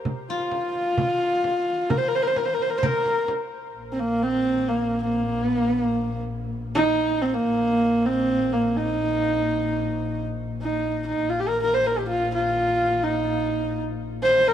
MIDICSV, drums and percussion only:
0, 0, Header, 1, 2, 480
1, 0, Start_track
1, 0, Tempo, 462606
1, 58, Time_signature, 4, 2, 24, 8
1, 5819, Tempo, 465839
1, 15017, End_track
2, 0, Start_track
2, 0, Title_t, "Frame drum"
2, 54, Note_on_c, 9, 64, 58
2, 157, Note_off_c, 9, 64, 0
2, 410, Note_on_c, 9, 64, 21
2, 514, Note_off_c, 9, 64, 0
2, 535, Note_on_c, 9, 64, 54
2, 638, Note_off_c, 9, 64, 0
2, 777, Note_on_c, 9, 64, 22
2, 881, Note_off_c, 9, 64, 0
2, 1011, Note_on_c, 9, 64, 69
2, 1115, Note_off_c, 9, 64, 0
2, 1497, Note_on_c, 9, 64, 54
2, 1601, Note_off_c, 9, 64, 0
2, 1973, Note_on_c, 9, 64, 73
2, 2077, Note_off_c, 9, 64, 0
2, 2334, Note_on_c, 9, 64, 21
2, 2437, Note_off_c, 9, 64, 0
2, 2454, Note_on_c, 9, 64, 61
2, 2558, Note_off_c, 9, 64, 0
2, 2693, Note_on_c, 9, 64, 23
2, 2797, Note_off_c, 9, 64, 0
2, 2935, Note_on_c, 9, 64, 72
2, 3038, Note_off_c, 9, 64, 0
2, 3172, Note_on_c, 9, 64, 51
2, 3276, Note_off_c, 9, 64, 0
2, 3407, Note_on_c, 9, 64, 59
2, 3511, Note_off_c, 9, 64, 0
2, 15017, End_track
0, 0, End_of_file